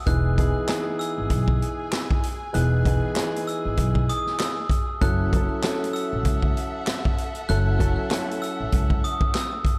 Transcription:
0.05 upright bass E1, grand piano E3 B3 D#4 G#4, string section G#4 G#5, glockenspiel F#6, kick, closed hi-hat
0.38 grand piano E3 B3 D#4 G#4, kick, closed hi-hat
0.67 grand piano E3 B3 D#4 G#4, snare, clap, closed hi-hat
0.99 glockenspiel E6, closed hi-hat
1.18 upright bass G#1
1.30 upright bass B1, kick, closed hi-hat
1.48 kick
1.62 closed hi-hat
1.93 snare, clap, closed hi-hat
2.11 kick
2.23 closed hi-hat
2.53 upright bass E1, grand piano E3 B3 D#4 G#4, glockenspiel F#6, closed hi-hat
2.85 grand piano E3 B3 D#4 G#4, kick, closed hi-hat
3.16 grand piano E3 B3 D#4 G#4, snare, clap, closed hi-hat
3.36 closed hi-hat
3.47 glockenspiel E6, closed hi-hat
3.65 upright bass G#1
3.77 upright bass B1, kick, closed hi-hat
3.95 kick
4.09 glockenspiel D#6, closed hi-hat
4.27 snare
4.39 glockenspiel E6, snare, clap, closed hi-hat
4.70 kick, closed hi-hat
5.01 upright bass F#1, grand piano F#3 C#4 E4 A4, string section A4 E5 F#5, glockenspiel F#6, kick, closed hi-hat
5.33 grand piano F#3 C#4 E4 A4, kick, closed hi-hat
5.64 grand piano F#3 C#4 E4 A4, snare, clap, closed hi-hat
5.84 closed hi-hat
5.93 glockenspiel E6, closed hi-hat
6.13 upright bass A1
6.25 upright bass C#2, kick, closed hi-hat
6.43 kick
6.57 closed hi-hat
6.87 snare, clap, closed hi-hat
7.05 kick
7.18 closed hi-hat
7.35 closed hi-hat
7.49 upright bass F#1, grand piano F#3 C#4 E4 A4, glockenspiel F#6, closed hi-hat
7.78 grand piano F#3 C#4 E4 A4, kick, closed hi-hat
8.10 grand piano F#3 C#4 E4 A4, snare, clap, closed hi-hat
8.31 closed hi-hat
8.42 glockenspiel E6, closed hi-hat
8.60 upright bass A1
8.72 upright bass C#2, kick, closed hi-hat
8.90 kick
9.04 glockenspiel D#6, closed hi-hat
9.21 kick
9.35 glockenspiel E6, snare, clap, closed hi-hat
9.65 kick, closed hi-hat

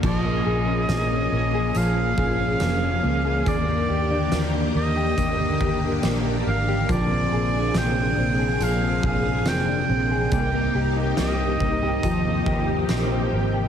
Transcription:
Already playing: clean electric guitar A#3 D4 G4
0.02 fingered electric bass A#1, string machine F3 A#3 C#4 G#4, clean electric guitar F3, oboe D#5, kick, crash
0.24 clean electric guitar A#3
0.45 fingered electric bass A#1, clean electric guitar G#4
0.67 clean electric guitar C#4
0.89 fingered electric bass A#1, clean electric guitar A#3, snare, closed hi-hat, tambourine
1.10 clean electric guitar C#4
1.32 fingered electric bass A#1, clean electric guitar A#3
1.54 clean electric guitar G#4
1.75 fingered electric bass A#1, clean electric guitar F3, oboe F5, closed hi-hat
1.97 clean electric guitar A#3
2.18 fingered electric bass A#1, clean electric guitar G#4, kick
2.39 clean electric guitar C#4
2.60 fingered electric bass F1, clean electric guitar A#3, snare, closed hi-hat, tambourine
2.82 clean electric guitar C#4
3.03 fingered electric bass C#2, clean electric guitar A#3
3.25 clean electric guitar G#4
3.46 fingered electric bass D#2, string machine D3 D#3 G4, clean electric guitar A#3, oboe D5, kick, closed hi-hat
3.67 clean electric guitar A#3
3.89 fingered electric bass D#2, clean electric guitar G4
4.10 clean electric guitar D4
4.31 fingered electric bass D#2, clean electric guitar A#3, snare, closed hi-hat, tambourine
4.75 fingered electric bass D#2, clean electric guitar A#3, oboe D#5
4.96 clean electric guitar G4
5.17 fingered electric bass D#2, clean electric guitar A#3, kick, closed hi-hat
5.39 clean electric guitar A#3
5.60 fingered electric bass D#2, clean electric guitar G4, kick
5.81 clean electric guitar D4
6.03 fingered electric bass A#1, clean electric guitar A#3, snare, closed hi-hat, tambourine
6.25 clean electric guitar D4
6.46 fingered electric bass G#1, clean electric guitar A#3, oboe F5
6.68 clean electric guitar G4
6.89 fingered electric bass A#1, string machine C3 G#4, clean electric guitar F3, oboe D5, kick, closed hi-hat
7.11 clean electric guitar C4
7.32 fingered electric bass A#1, clean electric guitar G#4
7.53 clean electric guitar D4
7.74 fingered electric bass A#1, clean electric guitar C4, oboe G5, snare, closed hi-hat, tambourine
7.96 clean electric guitar D4
8.17 fingered electric bass A#1, clean electric guitar C4
8.39 clean electric guitar G#4
8.60 fingered electric bass A#1, clean electric guitar F3, oboe F5, closed hi-hat
8.81 clean electric guitar C4
9.02 fingered electric bass A#1, clean electric guitar G#4, oboe F5, kick
9.24 clean electric guitar D4
9.46 fingered electric bass F1, clean electric guitar C4, oboe G5, snare, closed hi-hat, tambourine
9.67 clean electric guitar D4
9.89 fingered electric bass A#1, clean electric guitar C4
10.11 clean electric guitar G#4
10.32 fingered electric bass C2, clean electric guitar A#3, string machine D#4 G4, oboe G5, kick, closed hi-hat
10.53 clean electric guitar A#3
10.75 fingered electric bass C2, clean electric guitar G4
10.96 clean electric guitar D#4
11.17 fingered electric bass C2, clean electric guitar A#3, oboe D#5, snare, closed hi-hat, tambourine
11.39 clean electric guitar D#4
11.60 fingered electric bass C2, clean electric guitar A#3, kick
11.82 clean electric guitar G4
12.03 fingered electric bass D#2, string machine F3 G4, clean electric guitar F3, kick, closed hi-hat
12.25 clean electric guitar A#3
12.46 fingered electric bass D#2, clean electric guitar G4, kick
12.68 clean electric guitar C4
12.88 fingered electric bass A#1, clean electric guitar A#3, snare, closed hi-hat, tambourine
13.10 clean electric guitar C4
13.32 fingered electric bass G#1, clean electric guitar A#3
13.53 clean electric guitar G4

